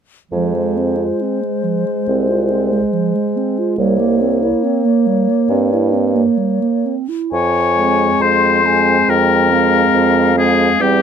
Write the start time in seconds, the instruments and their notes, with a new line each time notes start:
0.31 bassoon F2, clarinet F3, french horn G#3, flute C5
0.54 clarinet G#3
0.77 clarinet C4
0.97 clarinet F4
1.21 clarinet C4
1.42 clarinet G#3
1.63 clarinet F3
1.86 clarinet G#3
2.08 bassoon C2, clarinet C4
2.29 clarinet F4
2.50 clarinet C4
2.72 clarinet G#3
2.93 clarinet F3
3.15 clarinet G#3
3.37 clarinet C4
3.59 clarinet F4
3.77 bassoon C2, clarinet G3, french horn A#3, flute C#5
3.99 clarinet A#3
4.21 clarinet C4
4.42 clarinet E4
4.64 clarinet C4
4.85 clarinet A#3
5.06 clarinet G3
5.29 clarinet A#3
5.49 bassoon G2, clarinet C4
5.73 clarinet E4
5.93 clarinet C4
6.15 clarinet A#3
6.37 clarinet G3
6.62 clarinet A#3
6.85 clarinet C4
7.09 clarinet E4
7.31 bassoon F2, oboe C#5, flute G#5
7.77 french horn G#3, clarinet C4
8.20 bassoon F2, oboe C5, flute C6
8.64 french horn G#3, clarinet C4, flute G#5
9.09 bassoon F2, oboe A#4, flute G5
9.50 french horn G#3, clarinet C4, flute F5
9.94 bassoon F2
10.36 french horn G#3, clarinet C4, oboe G#4
10.80 bassoon E2, french horn G3, clarinet C4, oboe G4, flute G5